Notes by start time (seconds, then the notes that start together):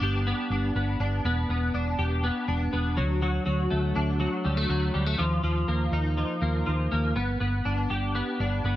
Already playing: G3 B3 D4
0.01 G1 G4
0.27 B3
0.50 G1 D4
0.75 G1 B3
1.00 G1 D4
1.25 E1 B3
1.49 E1 B3
1.74 E1 D4
1.99 E1 G4
2.24 B3
2.48 E1 D4
2.73 E1 B3
2.97 D2 F#3
3.22 F#3
3.46 D2 F#3
3.70 D2 A3
3.96 D2 D4
4.20 F#3
4.45 D2 G3
4.57 A3
4.69 D2 F#3
4.94 D2 G3
5.06 A3
5.18 D#2 F3
5.43 D#2 F3
5.68 D#2 A#3
5.92 D#2 D#4
6.17 F3
6.42 D#2 A#3
6.66 D#2 F3
6.92 D#2 A#3
7.16 G1 B3
7.40 G1 B3
7.65 G1 D4
7.90 G1 G4
8.15 B3
8.40 G1 D4
8.64 G1 B3